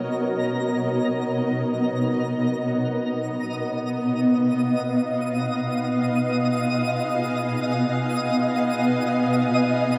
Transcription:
Already playing: ambient pad B3 F#4 A#4 C#5 D#5, synth texture A#4 A#5
2.94 synth texture D#5 D#6
3.55 ambient pad B4 F5
5.46 ambient pad G#5

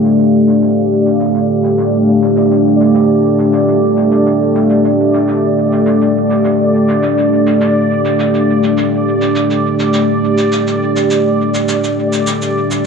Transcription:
Already playing: ambient pad A3 D4 G4 C5 F5, synth texture D5
0.04 shaker
0.19 shaker
0.48 shaker
0.62 shaker
1.06 shaker
1.20 shaker
1.35 shaker
1.64 shaker
1.78 shaker
2.22 shaker
2.37 shaker
2.51 shaker
2.80 shaker
2.95 shaker
3.39 shaker
3.53 shaker
3.68 shaker
3.97 shaker
4.11 shaker
4.26 shaker
4.55 shaker
4.70 shaker
4.85 shaker
5.14 shaker
5.28 shaker
5.72 shaker
5.86 shaker
6.01 shaker
6.30 shaker
6.45 shaker
6.89 shaker
7.03 shaker
7.18 shaker
7.47 shaker
7.61 shaker
8.05 shaker
8.19 shaker
8.34 shaker
8.63 shaker
8.78 shaker
9.21 shaker
9.36 shaker
9.51 shaker
9.80 shaker
9.94 shaker
10.38 shaker
10.52 shaker
10.67 shaker
10.96 shaker
11.10 shaker
11.54 shaker
11.69 shaker
11.84 shaker
12.13 shaker
12.27 shaker
12.42 shaker
12.71 shaker

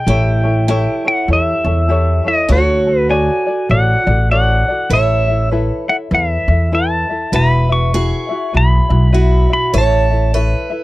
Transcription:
Already playing: pedal steel guitar G5
0.07 upright bass A1, ukulele E4 G4 A4 C#5, steel-string acoustic guitar E4
0.43 ukulele E4 A4 C#5
0.68 steel-string acoustic guitar E4, ukulele E4 G4 A4 C#5
1.05 ukulele E4 A4 C#5, pedal steel guitar F#5
1.28 upright bass E2, ukulele E4 G4 A4 C#5
1.33 pedal steel guitar E5
1.64 upright bass E2, ukulele E4 A4 C#5
1.89 ukulele E4 G4 A4 C#5
2.24 ukulele E4 A4 C#5, pedal steel guitar D#5
2.49 upright bass D2, steel-string acoustic guitar F#4, ukulele F#4 A4 C#5, pedal steel guitar C#5
2.87 ukulele F#4 A4
2.99 pedal steel guitar B4
3.09 ukulele F#4 A4 C#5 D5, pedal steel guitar G#5
3.47 ukulele F#4 A4 D5
3.69 upright bass A1, ukulele F#4 A4 C#5 D5, pedal steel guitar F#5
4.07 upright bass A1, steel-string acoustic guitar E4, ukulele F#4 A4 D5
4.31 ukulele F#4 A4 C#5 D5, pedal steel guitar F#5
4.68 ukulele F#4 A4 D5
4.90 upright bass A1, ukulele E4 A4 B4 E5, steel-string acoustic guitar C#5, pedal steel guitar E5
5.28 ukulele E4 A4 E5
5.51 ukulele E4 A4 B4 E5
5.88 ukulele E4 A4 E5, pedal steel guitar F#5
6.11 upright bass E2, ukulele E4 A4 B4 E5, pedal steel guitar E5
6.48 upright bass E2, ukulele E4 A4 E5
6.72 ukulele E4 A4 B4 E5, pedal steel guitar A5
7.09 ukulele E4 A4 E5
7.32 upright bass E1, ukulele E4 F#4 B4 E5, steel-string acoustic guitar B4, pedal steel guitar B5
7.69 ukulele E4 F#4 E5, pedal steel guitar C#6
7.93 ukulele E4 F#4 B4 E5, steel-string acoustic guitar G#4
8.29 ukulele E4 F#4 E5
8.53 upright bass B1, ukulele E4 F#4 B4 E5
8.57 pedal steel guitar B5
8.89 upright bass B1, ukulele E4 F#4 E5
9.12 ukulele E4 F#4 B4 E5, steel-string acoustic guitar F#4
9.50 ukulele E4 F#4 E5, pedal steel guitar B5
9.73 upright bass A1, ukulele E4 A4 C#5 E5, steel-string acoustic guitar C#5
9.78 pedal steel guitar A5
10.10 ukulele E4 A4 E5
10.34 ukulele E4 A4 C#5 E5, steel-string acoustic guitar B4
10.70 ukulele E4 A4 E5

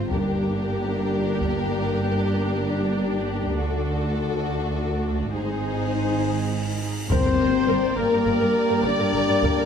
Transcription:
Already playing: double bass section G#1, cello section G#2, french horn section F4
0.10 double bass section G1, cello section G2, french horn section A#3 G4, viola section D4, violin section G4 A#4, taiko
1.41 taiko
3.57 cello section D2, double bass section D2, french horn section A3 F#4, violin section F#4 A4, cymbal swell
5.34 double bass section G#1, cello section G#2, french horn section C4 G#4, viola section D#4, violin section G#4 C5
7.10 double bass section G1, timpani G2, cello section G2, trombone section G3 A#3, woodwind section A#3 D4 G4 G5, french horn section C4, violin section A#4 C5 D5, viola section A#4, trumpet C5, flute section C5, taiko, impact
7.25 cello section G2, viola section A#4
7.40 double bass section G1, cello section G2, viola section A#4
7.68 double bass section G1, cello section G2, viola section A#4
7.97 double bass section G1, cello section G2, french horn section A#3, viola section A#4, flute section A#4, trumpet A#4, violin section A#4
8.12 cello section G2, viola section A#4
8.25 double bass section G1, cello section G2, viola section A#4
8.40 cello section G2, viola section A#4
8.69 cello section G2, viola section A#4
8.83 double bass section G1, cello section G2, french horn section D4, viola section A#4, flute section D5, violin section D5, trumpet D5
8.99 cello section G2, viola section A#4
9.13 double bass section G1, cello section G2, viola section A#4
9.28 cello section G2, viola section A#4
9.43 double bass section G1, cello section G2, viola section A#4, taiko
9.57 cello section G2, viola section A#4

